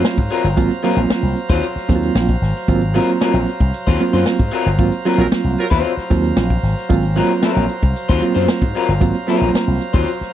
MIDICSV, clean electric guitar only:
0, 0, Header, 1, 2, 480
1, 0, Start_track
1, 0, Tempo, 528169
1, 520, Time_signature, 4, 2, 24, 8
1, 9388, End_track
2, 0, Start_track
2, 0, Title_t, "Clean electric guitar"
2, 0, Program_c, 0, 27
2, 278, Note_on_c, 0, 54, 89
2, 286, Note_on_c, 0, 60, 86
2, 287, Note_on_c, 0, 65, 97
2, 292, Note_on_c, 0, 70, 100
2, 406, Note_off_c, 0, 54, 0
2, 410, Note_off_c, 0, 60, 0
2, 411, Note_off_c, 0, 65, 0
2, 413, Note_off_c, 0, 70, 0
2, 752, Note_on_c, 0, 54, 88
2, 758, Note_on_c, 0, 60, 80
2, 761, Note_on_c, 0, 65, 94
2, 767, Note_on_c, 0, 70, 86
2, 883, Note_off_c, 0, 54, 0
2, 886, Note_off_c, 0, 60, 0
2, 888, Note_off_c, 0, 65, 0
2, 891, Note_off_c, 0, 70, 0
2, 1358, Note_on_c, 0, 72, 81
2, 1364, Note_on_c, 0, 65, 83
2, 1371, Note_on_c, 0, 60, 80
2, 1373, Note_on_c, 0, 54, 78
2, 1486, Note_off_c, 0, 72, 0
2, 1489, Note_off_c, 0, 65, 0
2, 1492, Note_off_c, 0, 60, 0
2, 1494, Note_off_c, 0, 54, 0
2, 2673, Note_on_c, 0, 54, 92
2, 2684, Note_on_c, 0, 65, 89
2, 2685, Note_on_c, 0, 60, 89
2, 2689, Note_on_c, 0, 70, 101
2, 2803, Note_off_c, 0, 54, 0
2, 2808, Note_off_c, 0, 65, 0
2, 2809, Note_off_c, 0, 60, 0
2, 2811, Note_off_c, 0, 70, 0
2, 2916, Note_on_c, 0, 54, 89
2, 2924, Note_on_c, 0, 60, 88
2, 2926, Note_on_c, 0, 65, 101
2, 2933, Note_on_c, 0, 70, 92
2, 3044, Note_off_c, 0, 54, 0
2, 3048, Note_off_c, 0, 60, 0
2, 3049, Note_off_c, 0, 65, 0
2, 3053, Note_off_c, 0, 70, 0
2, 3515, Note_on_c, 0, 72, 96
2, 3523, Note_on_c, 0, 65, 86
2, 3528, Note_on_c, 0, 60, 80
2, 3533, Note_on_c, 0, 54, 72
2, 3644, Note_off_c, 0, 72, 0
2, 3648, Note_off_c, 0, 65, 0
2, 3650, Note_off_c, 0, 60, 0
2, 3653, Note_off_c, 0, 54, 0
2, 3755, Note_on_c, 0, 72, 68
2, 3759, Note_on_c, 0, 65, 61
2, 3769, Note_on_c, 0, 54, 59
2, 3769, Note_on_c, 0, 60, 54
2, 3856, Note_off_c, 0, 72, 0
2, 3858, Note_off_c, 0, 65, 0
2, 3863, Note_off_c, 0, 54, 0
2, 3863, Note_off_c, 0, 60, 0
2, 4105, Note_on_c, 0, 54, 104
2, 4116, Note_on_c, 0, 60, 94
2, 4119, Note_on_c, 0, 65, 98
2, 4124, Note_on_c, 0, 70, 100
2, 4238, Note_off_c, 0, 54, 0
2, 4243, Note_off_c, 0, 60, 0
2, 4245, Note_off_c, 0, 65, 0
2, 4248, Note_off_c, 0, 70, 0
2, 4594, Note_on_c, 0, 54, 67
2, 4595, Note_on_c, 0, 60, 84
2, 4603, Note_on_c, 0, 65, 80
2, 4606, Note_on_c, 0, 70, 81
2, 4722, Note_off_c, 0, 54, 0
2, 4723, Note_off_c, 0, 60, 0
2, 4727, Note_off_c, 0, 65, 0
2, 4728, Note_off_c, 0, 70, 0
2, 5182, Note_on_c, 0, 72, 81
2, 5190, Note_on_c, 0, 65, 72
2, 5198, Note_on_c, 0, 60, 80
2, 5201, Note_on_c, 0, 54, 79
2, 5372, Note_off_c, 0, 72, 0
2, 5376, Note_off_c, 0, 65, 0
2, 5380, Note_off_c, 0, 60, 0
2, 5381, Note_off_c, 0, 54, 0
2, 6508, Note_on_c, 0, 54, 93
2, 6513, Note_on_c, 0, 60, 98
2, 6517, Note_on_c, 0, 65, 107
2, 6523, Note_on_c, 0, 70, 97
2, 6639, Note_off_c, 0, 54, 0
2, 6641, Note_off_c, 0, 60, 0
2, 6643, Note_off_c, 0, 65, 0
2, 6646, Note_off_c, 0, 70, 0
2, 6750, Note_on_c, 0, 54, 83
2, 6758, Note_on_c, 0, 60, 78
2, 6764, Note_on_c, 0, 65, 82
2, 6767, Note_on_c, 0, 70, 88
2, 6935, Note_off_c, 0, 54, 0
2, 6939, Note_off_c, 0, 60, 0
2, 6942, Note_off_c, 0, 65, 0
2, 6943, Note_off_c, 0, 70, 0
2, 7350, Note_on_c, 0, 72, 93
2, 7355, Note_on_c, 0, 65, 83
2, 7363, Note_on_c, 0, 60, 89
2, 7366, Note_on_c, 0, 54, 72
2, 7480, Note_off_c, 0, 72, 0
2, 7482, Note_off_c, 0, 65, 0
2, 7486, Note_off_c, 0, 60, 0
2, 7488, Note_off_c, 0, 54, 0
2, 7586, Note_on_c, 0, 72, 74
2, 7592, Note_on_c, 0, 65, 65
2, 7602, Note_on_c, 0, 54, 56
2, 7602, Note_on_c, 0, 60, 62
2, 7690, Note_off_c, 0, 72, 0
2, 7693, Note_off_c, 0, 65, 0
2, 7698, Note_off_c, 0, 54, 0
2, 7698, Note_off_c, 0, 60, 0
2, 7955, Note_on_c, 0, 54, 92
2, 7962, Note_on_c, 0, 60, 91
2, 7967, Note_on_c, 0, 65, 96
2, 7971, Note_on_c, 0, 70, 105
2, 8082, Note_off_c, 0, 54, 0
2, 8086, Note_off_c, 0, 60, 0
2, 8088, Note_off_c, 0, 65, 0
2, 8090, Note_off_c, 0, 70, 0
2, 8426, Note_on_c, 0, 54, 81
2, 8433, Note_on_c, 0, 60, 85
2, 8442, Note_on_c, 0, 65, 85
2, 8445, Note_on_c, 0, 70, 84
2, 8613, Note_off_c, 0, 54, 0
2, 8617, Note_off_c, 0, 60, 0
2, 8621, Note_off_c, 0, 65, 0
2, 8623, Note_off_c, 0, 70, 0
2, 9028, Note_on_c, 0, 72, 83
2, 9037, Note_on_c, 0, 65, 86
2, 9041, Note_on_c, 0, 60, 79
2, 9044, Note_on_c, 0, 54, 81
2, 9159, Note_off_c, 0, 72, 0
2, 9164, Note_off_c, 0, 65, 0
2, 9165, Note_off_c, 0, 60, 0
2, 9167, Note_off_c, 0, 54, 0
2, 9388, End_track
0, 0, End_of_file